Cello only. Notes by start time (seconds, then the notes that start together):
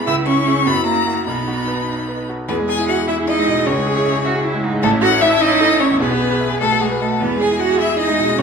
0.06 E4
0.26 C#4
0.66 B3
0.86 A#3
1.27 B3
2.48 B3
2.68 G#4
2.88 F#4
3.08 E4
3.27 D#4
3.66 C#4
4.82 A3
5.01 F#4
5.21 E4
5.40 D#4
5.80 C#4
6.01 B3
6.61 A3
6.82 G#3
7.01 A3
7.21 B3
7.41 G#4
7.60 F#4
7.79 E4
7.99 D#4
8.37 C#4